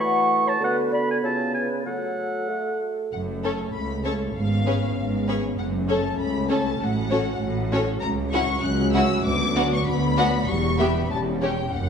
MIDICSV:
0, 0, Header, 1, 11, 480
1, 0, Start_track
1, 0, Key_signature, 3, "minor"
1, 0, Tempo, 630915
1, 453, Time_signature, 2, 2, 24, 8
1, 2381, Tempo, 612245
1, 6218, Key_signature, 2, "minor"
1, 7661, Tempo, 626305
1, 9215, End_track
2, 0, Start_track
2, 0, Title_t, "Violin section"
2, 0, Program_c, 0, 48
2, 2375, Note_on_c, 0, 78, 66
2, 2438, Note_off_c, 0, 78, 0
2, 2627, Note_on_c, 0, 81, 71
2, 2690, Note_off_c, 0, 81, 0
2, 2857, Note_on_c, 0, 83, 76
2, 3097, Note_off_c, 0, 83, 0
2, 3098, Note_on_c, 0, 81, 76
2, 3161, Note_off_c, 0, 81, 0
2, 3348, Note_on_c, 0, 77, 82
2, 4054, Note_off_c, 0, 77, 0
2, 4309, Note_on_c, 0, 78, 77
2, 4371, Note_off_c, 0, 78, 0
2, 4540, Note_on_c, 0, 81, 76
2, 4776, Note_off_c, 0, 81, 0
2, 4782, Note_on_c, 0, 83, 82
2, 5018, Note_off_c, 0, 83, 0
2, 5025, Note_on_c, 0, 81, 82
2, 5259, Note_off_c, 0, 81, 0
2, 5260, Note_on_c, 0, 78, 88
2, 5978, Note_off_c, 0, 78, 0
2, 6210, Note_on_c, 0, 82, 100
2, 6273, Note_off_c, 0, 82, 0
2, 6441, Note_on_c, 0, 85, 100
2, 6683, Note_off_c, 0, 85, 0
2, 6689, Note_on_c, 0, 90, 95
2, 6925, Note_on_c, 0, 88, 98
2, 6933, Note_off_c, 0, 90, 0
2, 7167, Note_off_c, 0, 88, 0
2, 7175, Note_on_c, 0, 86, 108
2, 7531, Note_off_c, 0, 86, 0
2, 7557, Note_on_c, 0, 85, 95
2, 7662, Note_on_c, 0, 83, 107
2, 7666, Note_off_c, 0, 85, 0
2, 8125, Note_off_c, 0, 83, 0
2, 8132, Note_on_c, 0, 85, 106
2, 8370, Note_off_c, 0, 85, 0
2, 8376, Note_on_c, 0, 83, 86
2, 8612, Note_on_c, 0, 81, 84
2, 8613, Note_off_c, 0, 83, 0
2, 8674, Note_off_c, 0, 81, 0
2, 8860, Note_on_c, 0, 79, 83
2, 9093, Note_on_c, 0, 78, 86
2, 9096, Note_off_c, 0, 79, 0
2, 9215, Note_off_c, 0, 78, 0
2, 9215, End_track
3, 0, Start_track
3, 0, Title_t, "Oboe"
3, 0, Program_c, 1, 68
3, 2, Note_on_c, 1, 85, 99
3, 368, Note_on_c, 1, 81, 89
3, 379, Note_off_c, 1, 85, 0
3, 470, Note_off_c, 1, 81, 0
3, 487, Note_on_c, 1, 78, 93
3, 586, Note_off_c, 1, 78, 0
3, 713, Note_on_c, 1, 83, 85
3, 819, Note_off_c, 1, 83, 0
3, 841, Note_on_c, 1, 80, 78
3, 888, Note_off_c, 1, 80, 0
3, 948, Note_on_c, 1, 81, 78
3, 1169, Note_off_c, 1, 81, 0
3, 1174, Note_on_c, 1, 80, 73
3, 1281, Note_off_c, 1, 80, 0
3, 1420, Note_on_c, 1, 78, 76
3, 2131, Note_off_c, 1, 78, 0
3, 9215, End_track
4, 0, Start_track
4, 0, Title_t, "Flute section"
4, 0, Program_c, 2, 73
4, 0, Note_on_c, 2, 78, 77
4, 329, Note_off_c, 2, 78, 0
4, 346, Note_on_c, 2, 73, 66
4, 392, Note_off_c, 2, 73, 0
4, 466, Note_on_c, 2, 71, 76
4, 692, Note_on_c, 2, 74, 66
4, 693, Note_off_c, 2, 71, 0
4, 803, Note_on_c, 2, 71, 66
4, 811, Note_off_c, 2, 74, 0
4, 849, Note_off_c, 2, 71, 0
4, 921, Note_on_c, 2, 73, 65
4, 975, Note_off_c, 2, 73, 0
4, 1163, Note_on_c, 2, 71, 54
4, 1402, Note_off_c, 2, 71, 0
4, 1416, Note_on_c, 2, 69, 50
4, 2144, Note_off_c, 2, 69, 0
4, 9215, End_track
5, 0, Start_track
5, 0, Title_t, "Violin section"
5, 0, Program_c, 3, 48
5, 2621, Note_on_c, 3, 69, 57
5, 2622, Note_on_c, 3, 73, 51
5, 2735, Note_off_c, 3, 69, 0
5, 2736, Note_off_c, 3, 73, 0
5, 3096, Note_on_c, 3, 69, 58
5, 3096, Note_on_c, 3, 73, 57
5, 3213, Note_off_c, 3, 69, 0
5, 3213, Note_off_c, 3, 73, 0
5, 3584, Note_on_c, 3, 71, 56
5, 3587, Note_on_c, 3, 73, 54
5, 3698, Note_off_c, 3, 71, 0
5, 3699, Note_off_c, 3, 73, 0
5, 4063, Note_on_c, 3, 73, 58
5, 4065, Note_on_c, 3, 71, 58
5, 4177, Note_off_c, 3, 73, 0
5, 4178, Note_off_c, 3, 71, 0
5, 4542, Note_on_c, 3, 69, 63
5, 4545, Note_on_c, 3, 73, 58
5, 4655, Note_off_c, 3, 69, 0
5, 4656, Note_off_c, 3, 73, 0
5, 5019, Note_on_c, 3, 69, 64
5, 5020, Note_on_c, 3, 73, 62
5, 5132, Note_off_c, 3, 69, 0
5, 5133, Note_off_c, 3, 73, 0
5, 5499, Note_on_c, 3, 73, 65
5, 5501, Note_on_c, 3, 69, 62
5, 5612, Note_off_c, 3, 69, 0
5, 5612, Note_off_c, 3, 73, 0
5, 5986, Note_on_c, 3, 73, 76
5, 5988, Note_on_c, 3, 69, 70
5, 6094, Note_off_c, 3, 73, 0
5, 6095, Note_off_c, 3, 69, 0
5, 6458, Note_on_c, 3, 66, 72
5, 6460, Note_on_c, 3, 78, 68
5, 6569, Note_off_c, 3, 66, 0
5, 6570, Note_off_c, 3, 78, 0
5, 6936, Note_on_c, 3, 78, 65
5, 6941, Note_on_c, 3, 66, 79
5, 7048, Note_off_c, 3, 78, 0
5, 7051, Note_off_c, 3, 66, 0
5, 7426, Note_on_c, 3, 66, 77
5, 7426, Note_on_c, 3, 78, 66
5, 7535, Note_off_c, 3, 66, 0
5, 7535, Note_off_c, 3, 78, 0
5, 7898, Note_on_c, 3, 66, 81
5, 7899, Note_on_c, 3, 78, 79
5, 8007, Note_off_c, 3, 66, 0
5, 8008, Note_off_c, 3, 78, 0
5, 8367, Note_on_c, 3, 76, 69
5, 8371, Note_on_c, 3, 67, 70
5, 8480, Note_off_c, 3, 76, 0
5, 8482, Note_off_c, 3, 67, 0
5, 8852, Note_on_c, 3, 67, 62
5, 8855, Note_on_c, 3, 73, 65
5, 8965, Note_off_c, 3, 67, 0
5, 8967, Note_off_c, 3, 73, 0
5, 9215, End_track
6, 0, Start_track
6, 0, Title_t, "Viola section"
6, 0, Program_c, 4, 48
6, 2624, Note_on_c, 4, 61, 65
6, 2625, Note_on_c, 4, 69, 60
6, 2737, Note_off_c, 4, 61, 0
6, 2738, Note_off_c, 4, 69, 0
6, 3100, Note_on_c, 4, 69, 53
6, 3102, Note_on_c, 4, 61, 50
6, 3215, Note_off_c, 4, 69, 0
6, 3216, Note_off_c, 4, 61, 0
6, 3579, Note_on_c, 4, 68, 60
6, 3581, Note_on_c, 4, 61, 61
6, 3695, Note_off_c, 4, 68, 0
6, 3696, Note_off_c, 4, 61, 0
6, 4062, Note_on_c, 4, 68, 60
6, 4063, Note_on_c, 4, 61, 52
6, 4177, Note_off_c, 4, 61, 0
6, 4177, Note_off_c, 4, 68, 0
6, 4538, Note_on_c, 4, 61, 62
6, 4538, Note_on_c, 4, 69, 61
6, 4652, Note_off_c, 4, 61, 0
6, 4652, Note_off_c, 4, 69, 0
6, 5018, Note_on_c, 4, 61, 63
6, 5019, Note_on_c, 4, 69, 68
6, 5132, Note_off_c, 4, 61, 0
6, 5133, Note_off_c, 4, 69, 0
6, 5494, Note_on_c, 4, 61, 63
6, 5498, Note_on_c, 4, 66, 60
6, 5609, Note_off_c, 4, 61, 0
6, 5611, Note_off_c, 4, 66, 0
6, 5977, Note_on_c, 4, 61, 71
6, 5977, Note_on_c, 4, 66, 63
6, 6089, Note_off_c, 4, 61, 0
6, 6089, Note_off_c, 4, 66, 0
6, 6459, Note_on_c, 4, 64, 73
6, 6462, Note_on_c, 4, 61, 74
6, 6569, Note_off_c, 4, 64, 0
6, 6570, Note_off_c, 4, 61, 0
6, 6935, Note_on_c, 4, 61, 78
6, 6935, Note_on_c, 4, 64, 70
6, 7048, Note_off_c, 4, 61, 0
6, 7048, Note_off_c, 4, 64, 0
6, 7420, Note_on_c, 4, 59, 76
6, 7420, Note_on_c, 4, 62, 69
6, 7532, Note_off_c, 4, 59, 0
6, 7532, Note_off_c, 4, 62, 0
6, 7894, Note_on_c, 4, 59, 74
6, 7895, Note_on_c, 4, 62, 68
6, 8005, Note_off_c, 4, 59, 0
6, 8005, Note_off_c, 4, 62, 0
6, 8371, Note_on_c, 4, 59, 75
6, 8373, Note_on_c, 4, 67, 66
6, 8482, Note_off_c, 4, 59, 0
6, 8483, Note_off_c, 4, 67, 0
6, 8851, Note_on_c, 4, 67, 61
6, 8855, Note_on_c, 4, 61, 66
6, 8965, Note_off_c, 4, 67, 0
6, 8967, Note_off_c, 4, 61, 0
6, 9215, End_track
7, 0, Start_track
7, 0, Title_t, "French horn section"
7, 0, Program_c, 5, 60
7, 0, Note_on_c, 5, 57, 66
7, 0, Note_on_c, 5, 66, 60
7, 430, Note_off_c, 5, 57, 0
7, 458, Note_on_c, 5, 59, 57
7, 891, Note_off_c, 5, 66, 0
7, 942, Note_on_c, 5, 65, 67
7, 1276, Note_off_c, 5, 59, 0
7, 1276, Note_off_c, 5, 65, 0
7, 1405, Note_on_c, 5, 57, 49
7, 1408, Note_on_c, 5, 66, 44
7, 2124, Note_off_c, 5, 57, 0
7, 2125, Note_off_c, 5, 66, 0
7, 2386, Note_on_c, 5, 61, 55
7, 2391, Note_on_c, 5, 57, 58
7, 3318, Note_off_c, 5, 61, 0
7, 3321, Note_off_c, 5, 57, 0
7, 3349, Note_on_c, 5, 61, 60
7, 3354, Note_on_c, 5, 59, 61
7, 4290, Note_off_c, 5, 61, 0
7, 4311, Note_off_c, 5, 59, 0
7, 4316, Note_on_c, 5, 57, 64
7, 4320, Note_on_c, 5, 61, 64
7, 5248, Note_off_c, 5, 57, 0
7, 5250, Note_off_c, 5, 61, 0
7, 5268, Note_on_c, 5, 61, 68
7, 5272, Note_on_c, 5, 54, 61
7, 6202, Note_off_c, 5, 61, 0
7, 6203, Note_off_c, 5, 54, 0
7, 6224, Note_on_c, 5, 54, 70
7, 6231, Note_on_c, 5, 61, 68
7, 6689, Note_off_c, 5, 61, 0
7, 6690, Note_off_c, 5, 54, 0
7, 6698, Note_on_c, 5, 54, 82
7, 6699, Note_on_c, 5, 61, 90
7, 7162, Note_off_c, 5, 54, 0
7, 7169, Note_off_c, 5, 61, 0
7, 7171, Note_on_c, 5, 54, 74
7, 7174, Note_on_c, 5, 59, 67
7, 7645, Note_off_c, 5, 59, 0
7, 7647, Note_off_c, 5, 54, 0
7, 7654, Note_on_c, 5, 59, 86
7, 7663, Note_on_c, 5, 54, 87
7, 8114, Note_off_c, 5, 59, 0
7, 8124, Note_on_c, 5, 55, 75
7, 8124, Note_on_c, 5, 59, 74
7, 8125, Note_off_c, 5, 54, 0
7, 8589, Note_off_c, 5, 55, 0
7, 8596, Note_off_c, 5, 59, 0
7, 8597, Note_on_c, 5, 61, 77
7, 8598, Note_on_c, 5, 55, 76
7, 8837, Note_off_c, 5, 55, 0
7, 8847, Note_on_c, 5, 55, 62
7, 8958, Note_off_c, 5, 55, 0
7, 8967, Note_off_c, 5, 61, 0
7, 9098, Note_on_c, 5, 61, 65
7, 9104, Note_on_c, 5, 58, 64
7, 9215, Note_off_c, 5, 58, 0
7, 9215, Note_off_c, 5, 61, 0
7, 9215, End_track
8, 0, Start_track
8, 0, Title_t, "Bassoon"
8, 0, Program_c, 6, 70
8, 0, Note_on_c, 6, 52, 71
8, 427, Note_off_c, 6, 52, 0
8, 459, Note_on_c, 6, 50, 68
8, 922, Note_off_c, 6, 50, 0
8, 936, Note_on_c, 6, 49, 65
8, 1404, Note_off_c, 6, 49, 0
8, 1411, Note_on_c, 6, 54, 52
8, 1896, Note_on_c, 6, 57, 55
8, 1907, Note_off_c, 6, 54, 0
8, 2382, Note_off_c, 6, 57, 0
8, 9215, End_track
9, 0, Start_track
9, 0, Title_t, "Timpani"
9, 0, Program_c, 7, 47
9, 9103, Note_on_c, 7, 42, 36
9, 9148, Note_off_c, 7, 42, 0
9, 9157, Note_on_c, 7, 42, 31
9, 9208, Note_off_c, 7, 42, 0
9, 9215, End_track
10, 0, Start_track
10, 0, Title_t, "Cello section"
10, 0, Program_c, 8, 48
10, 2382, Note_on_c, 8, 42, 71
10, 2786, Note_off_c, 8, 42, 0
10, 2865, Note_on_c, 8, 37, 61
10, 3267, Note_off_c, 8, 37, 0
10, 3350, Note_on_c, 8, 44, 68
10, 3750, Note_off_c, 8, 44, 0
10, 3825, Note_on_c, 8, 44, 64
10, 4226, Note_off_c, 8, 44, 0
10, 4313, Note_on_c, 8, 42, 76
10, 4707, Note_off_c, 8, 42, 0
10, 4790, Note_on_c, 8, 37, 75
10, 5186, Note_off_c, 8, 37, 0
10, 5262, Note_on_c, 8, 45, 72
10, 5660, Note_off_c, 8, 45, 0
10, 5737, Note_on_c, 8, 45, 78
10, 6137, Note_off_c, 8, 45, 0
10, 6222, Note_on_c, 8, 37, 76
10, 6618, Note_off_c, 8, 37, 0
10, 6692, Note_on_c, 8, 37, 86
10, 7095, Note_off_c, 8, 37, 0
10, 7176, Note_on_c, 8, 38, 93
10, 7579, Note_off_c, 8, 38, 0
10, 7662, Note_on_c, 8, 38, 84
10, 8055, Note_off_c, 8, 38, 0
10, 8135, Note_on_c, 8, 40, 87
10, 8531, Note_off_c, 8, 40, 0
10, 8615, Note_on_c, 8, 40, 80
10, 9018, Note_off_c, 8, 40, 0
10, 9101, Note_on_c, 8, 42, 80
10, 9215, Note_off_c, 8, 42, 0
10, 9215, End_track
11, 0, Start_track
11, 0, Title_t, "Double bass section"
11, 0, Program_c, 10, 48
11, 2377, Note_on_c, 10, 30, 65
11, 2784, Note_off_c, 10, 30, 0
11, 2862, Note_on_c, 10, 37, 72
11, 3265, Note_off_c, 10, 37, 0
11, 3342, Note_on_c, 10, 32, 68
11, 3746, Note_off_c, 10, 32, 0
11, 3828, Note_on_c, 10, 32, 71
11, 4228, Note_off_c, 10, 32, 0
11, 4304, Note_on_c, 10, 30, 70
11, 4703, Note_off_c, 10, 30, 0
11, 4785, Note_on_c, 10, 37, 76
11, 5183, Note_off_c, 10, 37, 0
11, 5261, Note_on_c, 10, 33, 75
11, 5660, Note_off_c, 10, 33, 0
11, 5736, Note_on_c, 10, 33, 84
11, 6136, Note_off_c, 10, 33, 0
11, 6217, Note_on_c, 10, 37, 80
11, 6615, Note_off_c, 10, 37, 0
11, 6698, Note_on_c, 10, 37, 98
11, 7098, Note_off_c, 10, 37, 0
11, 7182, Note_on_c, 10, 38, 84
11, 7582, Note_off_c, 10, 38, 0
11, 7659, Note_on_c, 10, 38, 88
11, 8054, Note_off_c, 10, 38, 0
11, 8132, Note_on_c, 10, 28, 84
11, 8529, Note_off_c, 10, 28, 0
11, 8612, Note_on_c, 10, 28, 86
11, 9016, Note_off_c, 10, 28, 0
11, 9100, Note_on_c, 10, 30, 73
11, 9215, Note_off_c, 10, 30, 0
11, 9215, End_track
0, 0, End_of_file